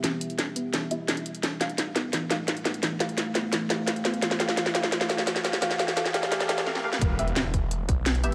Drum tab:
HH |x-xxx-x-x-x-xxxx|x-xxx-x-x-x-xxxx|x-xxx-x-x-x-xxxx|x-xxx-x-x-x-xxxx|
SD |o---o---o---o---|o-o-o-o-o-o-o-o-|o-o-o-o-o-o-o-o-|oooooooooooooooo|
BD |----------------|----------------|----------------|----------------|

HH |x-xxx-x-x-x-----|x-xxx-x-x-x-xxx-|
SD |oooooooooooooo-o|----o-------o---|
BD |----------------|o-----o---o-----|